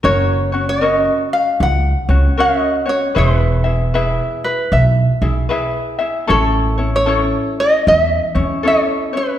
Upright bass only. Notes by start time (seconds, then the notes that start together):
0.04 F#1
1.60 C#2
2.09 C#2
3.16 E1
4.72 B1
5.22 B1
6.29 A1
7.87 E2
8.35 E2